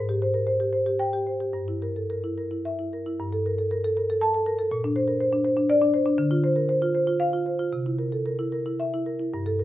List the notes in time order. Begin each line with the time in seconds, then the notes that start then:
Already playing: G#2
0.09 G4
0.22 C5
0.34 A#4
0.47 C5
0.60 G4
0.73 C5
0.86 G4
0.99 G5
1.13 G4
1.27 C5
1.40 G4
1.53 G2
1.68 E4
1.82 A#4
1.96 A4
2.10 A#4
2.24 E4
2.38 A#4
2.51 E4
2.65 E5
2.79 E4
2.93 A#4
3.06 E4
3.20 G2
3.33 A4
3.46 A#4
3.58 A4
3.71 A#4
3.84 A4
3.97 A#4
4.10 A4
4.21 A5
4.34 A4
4.46 A#4
4.59 A4
4.71 A#2
4.84 D4
4.96 C5
5.08 A#4
5.20 C5
5.32 D4
5.44 C5
5.57 D4
5.70 D5
5.82 D4
5.94 C5
6.06 D4
6.18 D3
6.31 F4
6.44 C5
6.56 A#4
6.69 C5
6.82 F4
6.95 C5
7.07 F4
7.20 F5
7.33 F4
7.46 C5
7.59 F4
7.73 C3
7.86 E4
7.99 A#4
8.12 A4
8.26 A#4
8.39 E4
8.52 A#4
8.66 E4
8.80 E5
8.94 E4
9.06 A#4
9.20 E4
9.34 G2
9.46 A4
9.59 A#4